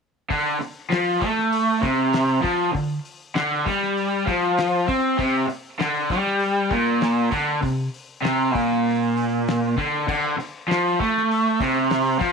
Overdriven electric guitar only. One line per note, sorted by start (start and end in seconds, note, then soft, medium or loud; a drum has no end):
0.30 0.60 D3 loud
0.61 muted overdriven electric guitar stroke medium
0.90 1.20 F3 medium
1.20 1.81 A3 medium
1.81 2.41 C3 medium
2.42 2.73 F3 loud
2.73 2.98 D3 medium
3.35 3.65 D3 loud
3.65 4.26 G3 loud
4.26 4.87 F3 loud
4.87 5.18 C4 loud
5.17 5.47 C3 loud
5.48 muted overdriven electric guitar stroke medium
5.80 6.10 D3 loud
6.11 6.71 G3 loud
6.71 7.31 A#2 loud
7.32 7.62 D3 loud
7.62 7.87 C3 medium
8.22 8.54 C3 loud
8.54 9.75 A#2 loud
9.78 10.07 D3 loud
10.08 10.37 D3 loud
10.38 muted overdriven electric guitar stroke medium
10.68 10.98 F3 loud
10.99 11.59 A3 loud
11.60 12.19 C3 loud
12.19 12.32 F3 loud